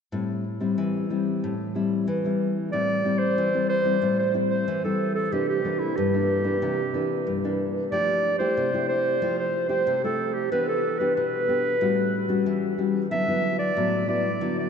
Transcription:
0.12 A2 G3 C4 E4
0.60 G3 C4 E4
0.78 E3
1.10 G3 C4 E4
1.44 A2
1.75 G3 C4 E4
2.08 E3
2.25 G3 C4 E4
2.72 A2 G3 C4 E4 D5
3.05 G3 C4 E4
3.19 C5
3.38 E3
3.54 G3 C4 E4
3.69 C5
3.84 G3 C4 E4
4.02 A2 G3 C4 E4
4.19 C5
4.34 G3 C4 E4
4.50 C5
4.68 E3
4.84 G3 C4 E4 A4
5.15 A4
5.32 C3 E3 A#3 D4 G4
5.49 G4
5.65 E3 A#3 D4
5.79 E4
5.96 G2 G4
6.14 E3 A#3 D4
6.44 E3 A#3 D4
6.62 C3 E3 A#3 D4
6.94 E3 A#3 D4
7.27 G2
7.44 E3 A#3 D4
7.92 F3 A3 E4 G4 D5
8.39 A3 E4 G4 C5
8.57 C3
8.74 A3 E4 G4
8.89 C5
9.22 F3 A3 E4 G4
9.39 C5
9.69 A3 E4 G4 C5
9.87 C3
10.04 A3 E4 G4 A4
10.34 G4
10.52 E3 B3 D4 G4 B4
10.68 A4
10.98 B3 D4 G4 B4
11.16 B2 B4
11.48 B3 D4 G4
11.81 A2 G3 C#4 F#4
12.28 G3 C#4 F#4
12.46 E3
12.78 G3 C#4 F#4
13.11 D3 F#3 B3 E4 E5
13.28 F#3 B3 E4
13.59 D5
13.77 A2 F#3 B3 E4
14.08 F#3 B3 E4 D5
14.41 D3 F#3 B3 E4
14.59 D5

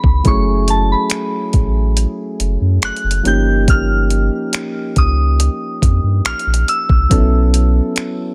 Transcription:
Already playing: E3 B3 C#4 D#4 G#4 B5
0.04 C#2, kick
0.24 F#1 F#3 A3 C#4 E4 G#4 C#6, kick, closed hi-hat
0.68 A5, closed hi-hat
0.92 B5
1.10 finger snap, closed hi-hat
1.53 A1, kick, closed hi-hat
1.97 closed hi-hat
2.40 F#1, closed hi-hat
2.61 F#2
2.82 F#1 F#6, finger snap, closed hi-hat
2.96 closed hi-hat
3.04 F#1
3.11 closed hi-hat
3.23 G1 F3 A#3 C#4 D#4 G4, closed hi-hat
3.27 G6
3.68 F6, kick, closed hi-hat
4.10 closed hi-hat
4.53 finger snap, closed hi-hat
4.96 C#2 D#6, kick, closed hi-hat
5.40 closed hi-hat
5.82 F2, kick, closed hi-hat
6.04 G2
6.25 A#1 F6, finger snap, closed hi-hat
6.39 closed hi-hat
6.47 A#1
6.54 closed hi-hat
6.68 E6, closed hi-hat
6.89 C2, kick
7.09 B1 F#3 B3 C#4 D#4 A4, kick, closed hi-hat
7.18 E4
7.54 closed hi-hat
7.96 finger snap, closed hi-hat

